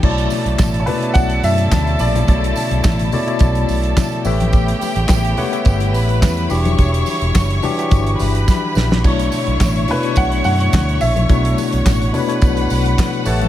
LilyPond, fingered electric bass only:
\new Staff \with { instrumentName = "Fingered electric bass" } { \clef bass \time 4/4 \key b \minor \tempo 4 = 106 b,,8 r16 b,,16 a,,8 r8 b,,8 fis,8 d,8 ais,,8 | b,,8 r16 b,,16 a,,8 r8 b,,8 b,,8 r8 a,,8~ | a,,8 r16 a,,16 a,,8 r8 g,,8 a,,8 e,8 e,,8 | e,,8 r16 e,,16 fis,,8 r8 g,,8 g,,8 r8 ais,,8 |
b,,8 r16 b,,16 a,,8 r8 b,,8 fis,8 d,8 ais,,8 | b,,8 r16 b,,16 a,,8 r8 b,,8 b,,8 r8 a,,8 | }